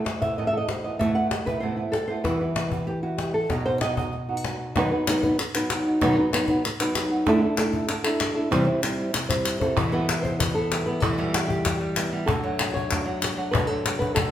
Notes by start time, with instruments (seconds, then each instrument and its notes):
Already playing: nylon-string guitar A3
0.05 nylon-string guitar C5, muted nylon-string guitar stroke, cajon slap
0.22 nylon-string guitar E3 A3 B3 E4 E5, cajon bass
0.38 nylon-string guitar A2 C3 E3 A3 B3 E4 D#5, cajon slap
0.47 nylon-string guitar E5
0.53 nylon-string guitar E3 A3 B3 E4 A4
0.57 nylon-string guitar D#5
0.68 nylon-string guitar C5, muted nylon-string guitar stroke, cajon slap
0.84 nylon-string guitar E3 A3 B3 E4 D#5, cajon slap
0.99 nylon-string guitar A2 C3 E3 A3 B3 E4 E5, cajon bass, cajon slap
1.15 nylon-string guitar E3 A3 B3 E4 F#5
1.31 nylon-string guitar D#5, muted nylon-string guitar stroke, cajon slap
1.46 nylon-string guitar E3 A3 B3 E4 B4, cajon bass
1.60 nylon-string guitar A2 C3 E3 A3 B3 E4 C5, cajon slap
1.77 nylon-string guitar E3 A3 B3 E4
1.92 nylon-string guitar A4, muted nylon-string guitar stroke, cajon slap
2.08 nylon-string guitar E3 A3 B3 E4 C5
2.24 nylon-string guitar E2 B2 E3 G3 B3 E4 B4, cajon bass, cajon slap
2.40 nylon-string guitar E3 G3 B3 E4 B4
2.56 nylon-string guitar E3 G3 B3 E4 E5, cajon slap
2.71 nylon-string guitar E3 G3 B3 E4, cajon bass
2.87 nylon-string guitar G4, muted nylon-string guitar stroke
3.02 nylon-string guitar E3 G3 B3 E4 F#4
3.18 nylon-string guitar G4, cajon slap
3.34 nylon-string guitar A4, cajon slap
3.50 nylon-string guitar B2 F#3 B3 D#4 F#4 B4, cajon bass, cajon slap
3.65 nylon-string guitar B3 D#4 F#4 C5
3.81 nylon-string guitar F#3 B3 D#4 F#4 D#5, cajon slap
3.97 nylon-string guitar B3 D#4 F#4 D#5, cajon bass
4.12 muted nylon-string guitar stroke
4.29 nylon-string guitar B3 D#4 F#4
4.37 nylon-string guitar F#4
4.44 cajon slap
4.76 nylon-string guitar B2 D#3 F#3 B3 D#4 F#4 B4, cajon bass, cajon slap
4.92 nylon-string guitar F#3 B3 D#4 F#4 B4
5.07 nylon-string guitar F#3 B3 D#4 F#4 B4, cajon slap, clap
5.23 nylon-string guitar F#3 B3 D#4 B4, cajon bass
5.39 muted nylon-string guitar stroke, clap
5.54 nylon-string guitar F#3 B3 D#4 F#4 B4, clap
5.70 cajon slap, clap
5.86 nylon-string guitar B3 D#4 F#4, cajon slap
6.01 nylon-string guitar B2 D#3 F#3 B3 D#4 F#4 B4, cajon bass, cajon slap, clap
6.17 nylon-string guitar F#3 B3 D#4 F#4 B4
6.32 nylon-string guitar F#3 B3 D#4 F#4 B4, cajon slap, clap
6.47 nylon-string guitar F#3 B3 D#4 B4, cajon bass
6.64 muted nylon-string guitar stroke, clap
6.80 nylon-string guitar F#3 B3 D#4 F#4 B4, clap
6.95 cajon slap, clap
7.11 nylon-string guitar B3 D#4 F#4, cajon slap
7.26 nylon-string guitar D3 A3 D4 E4 A4, cajon bass, cajon slap
7.42 nylon-string guitar A3 D4 E4 A4
7.57 nylon-string guitar A3 D4 E4 A4, muted nylon-string guitar stroke, cajon slap, clap
7.73 nylon-string guitar A3 D4 E4, cajon bass
7.88 nylon-string guitar D3 A3 D4 E4, muted nylon-string guitar stroke, cajon slap, clap
8.04 nylon-string guitar A3 D4 E4 A4, clap
8.20 muted nylon-string guitar stroke, cajon slap, clap
8.35 nylon-string guitar A3 D4 E4 A4, cajon slap
8.51 nylon-string guitar C3 E3 G3 C4 E4 C5, cajon bass, cajon slap
8.66 nylon-string guitar G3 C4 E4 C5
8.82 nylon-string guitar G3 C4 E4 C5, muted nylon-string guitar stroke, cajon slap, clap
8.99 nylon-string guitar G3 C4 E4
9.13 nylon-string guitar C3 E3 G3 C4 E4, muted nylon-string guitar stroke, cajon slap, clap
9.29 nylon-string guitar G3 C4 E4 C5, cajon bass, clap
9.45 muted nylon-string guitar stroke, clap
9.60 nylon-string guitar G3 C4 E4 A4 C5, cajon bass
9.77 nylon-string guitar E2 B2 E3 G3 B3 E4, cajon bass
9.83 nylon-string guitar B2 E3 G3 B3 E4
9.88 nylon-string guitar B2 E3 G3 B3 E4
9.92 nylon-string guitar E2 B2 E3 G3 B3 E4 B4, cajon slap
10.09 nylon-string guitar G3 B3, cajon slap, clap
10.23 nylon-string guitar C5, cajon bass
10.39 nylon-string guitar B4, muted nylon-string guitar stroke, cajon bass, clap
10.55 nylon-string guitar B3 A4
10.71 nylon-string guitar E3 G3 B3 E4, cajon slap, clap
10.86 nylon-string guitar E3 G3 B3 E4 B4
11.00 nylon-string guitar E2 B2 E3 G3 B3 E4 A4, cajon bass, clap
11.09 nylon-string guitar B2 E3 G3 B3 E4
11.13 nylon-string guitar B2 E3 G3 B3 E4
11.18 nylon-string guitar E2 B2 E3 G3 B3 E4, cajon slap
11.34 nylon-string guitar E3 G3 B3 E4, cajon slap, clap
11.48 nylon-string guitar G4, cajon bass
11.65 muted nylon-string guitar stroke, cajon bass, cajon slap, clap
11.81 nylon-string guitar G3
11.96 nylon-string guitar E3 G3 B3 E4, cajon slap, clap
12.12 nylon-string guitar E3 G3 B3 E4
12.26 nylon-string guitar D3 A3 D4 F#4 A4, cajon bass, clap
12.43 nylon-string guitar F#3 A3 D4 F#4
12.59 muted nylon-string guitar stroke, cajon slap, clap
12.74 nylon-string guitar A3 D4 F#4 C#5, cajon bass
12.90 nylon-string guitar D3 A3 D4 F#4, cajon bass, cajon slap, clap
13.06 nylon-string guitar F#3 A3 D4 F#4, cajon slap
13.22 muted nylon-string guitar stroke, cajon slap, clap
13.37 nylon-string guitar F#3 A3 D4 F#4
13.51 nylon-string guitar D3 A3 D4 F#4 B4, cajon bass, clap
13.67 nylon-string guitar F#3 A3 D4 F#4 A4, cajon slap
13.84 muted nylon-string guitar stroke, cajon slap, clap
13.99 nylon-string guitar A3 D4 F#4 B4, cajon bass
14.15 nylon-string guitar D3 A3 D4 F#4 A4, cajon bass, clap